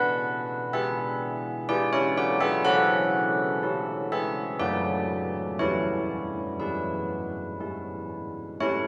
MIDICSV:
0, 0, Header, 1, 2, 480
1, 0, Start_track
1, 0, Tempo, 967742
1, 1320, Time_signature, 3, 2, 24, 8
1, 2288, Tempo, 1001669
1, 4329, End_track
2, 0, Start_track
2, 0, Title_t, "Church bells"
2, 0, Program_c, 0, 14
2, 0, Note_on_c, 0, 59, 56
2, 0, Note_on_c, 0, 71, 75
2, 0, Note_on_c, 0, 78, 99
2, 345, Note_off_c, 0, 78, 0
2, 347, Note_off_c, 0, 71, 0
2, 350, Note_off_c, 0, 59, 0
2, 364, Note_on_c, 0, 76, 81
2, 366, Note_on_c, 0, 62, 43
2, 366, Note_on_c, 0, 64, 53
2, 371, Note_on_c, 0, 68, 57
2, 823, Note_off_c, 0, 62, 0
2, 823, Note_off_c, 0, 64, 0
2, 823, Note_off_c, 0, 76, 0
2, 826, Note_off_c, 0, 68, 0
2, 837, Note_on_c, 0, 62, 51
2, 837, Note_on_c, 0, 74, 94
2, 838, Note_on_c, 0, 64, 59
2, 842, Note_on_c, 0, 68, 68
2, 954, Note_off_c, 0, 68, 0
2, 956, Note_on_c, 0, 73, 100
2, 959, Note_off_c, 0, 64, 0
2, 960, Note_off_c, 0, 74, 0
2, 965, Note_on_c, 0, 64, 63
2, 1075, Note_off_c, 0, 64, 0
2, 1078, Note_off_c, 0, 73, 0
2, 1079, Note_on_c, 0, 74, 93
2, 1085, Note_on_c, 0, 66, 73
2, 1193, Note_on_c, 0, 76, 102
2, 1194, Note_off_c, 0, 66, 0
2, 1200, Note_off_c, 0, 74, 0
2, 1200, Note_on_c, 0, 68, 78
2, 1297, Note_off_c, 0, 62, 0
2, 1311, Note_off_c, 0, 68, 0
2, 1312, Note_on_c, 0, 61, 66
2, 1313, Note_on_c, 0, 78, 118
2, 1316, Note_off_c, 0, 76, 0
2, 1319, Note_on_c, 0, 69, 89
2, 1782, Note_off_c, 0, 61, 0
2, 1800, Note_on_c, 0, 61, 52
2, 1801, Note_on_c, 0, 64, 56
2, 2020, Note_off_c, 0, 78, 0
2, 2023, Note_off_c, 0, 69, 0
2, 2044, Note_on_c, 0, 76, 89
2, 2048, Note_on_c, 0, 68, 62
2, 2269, Note_off_c, 0, 61, 0
2, 2269, Note_off_c, 0, 64, 0
2, 2274, Note_off_c, 0, 68, 0
2, 2279, Note_off_c, 0, 76, 0
2, 2279, Note_on_c, 0, 74, 96
2, 2280, Note_on_c, 0, 54, 61
2, 2282, Note_on_c, 0, 57, 52
2, 2283, Note_on_c, 0, 62, 50
2, 2287, Note_on_c, 0, 66, 65
2, 2743, Note_off_c, 0, 74, 0
2, 2744, Note_off_c, 0, 57, 0
2, 2745, Note_off_c, 0, 62, 0
2, 2747, Note_off_c, 0, 66, 0
2, 2748, Note_off_c, 0, 54, 0
2, 2758, Note_on_c, 0, 73, 93
2, 2759, Note_on_c, 0, 52, 60
2, 2765, Note_on_c, 0, 64, 67
2, 3225, Note_off_c, 0, 73, 0
2, 3229, Note_off_c, 0, 64, 0
2, 3230, Note_off_c, 0, 52, 0
2, 3238, Note_on_c, 0, 71, 58
2, 3241, Note_on_c, 0, 56, 41
2, 3245, Note_on_c, 0, 64, 45
2, 3706, Note_off_c, 0, 56, 0
2, 3717, Note_off_c, 0, 64, 0
2, 3720, Note_on_c, 0, 56, 39
2, 3723, Note_on_c, 0, 64, 41
2, 3945, Note_off_c, 0, 71, 0
2, 4185, Note_off_c, 0, 56, 0
2, 4186, Note_off_c, 0, 64, 0
2, 4200, Note_on_c, 0, 57, 59
2, 4201, Note_on_c, 0, 73, 91
2, 4207, Note_on_c, 0, 64, 70
2, 4329, Note_off_c, 0, 57, 0
2, 4329, Note_off_c, 0, 64, 0
2, 4329, Note_off_c, 0, 73, 0
2, 4329, End_track
0, 0, End_of_file